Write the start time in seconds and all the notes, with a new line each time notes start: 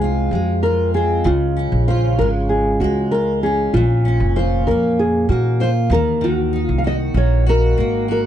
Already playing: C2 F2 G#3 C4 G#4
0.01 F4
0.31 F2 G#3
0.39 F#4
0.63 F4 A#4
0.94 C4 G#4
1.24 C#2 C#3 F4
1.57 C#4
1.72 A#1
1.88 F4 C5
2.18 G#1 G#3 A#4
2.49 G#4
2.80 C#2 G#3 F#4
3.11 F4 A#4
3.43 C#4 G#4
3.74 A#1 A#2 F4
4.05 C#4
4.20 F1
4.36 F4 C5
4.67 F2 A#3 A#4
4.99 G#4
5.29 A#2 A#3 F#4
5.60 F4 C5
5.90 D#2 D#3 A#4
6.21 D#3 F#4
6.53 D#4
6.64 F4
6.69 C2
6.78 F5
6.84 F#4 D#5
7.14 A#1 A#3 C#5
7.46 F#4 A#4
7.77 G#1 A#3
8.08 F#4 A#4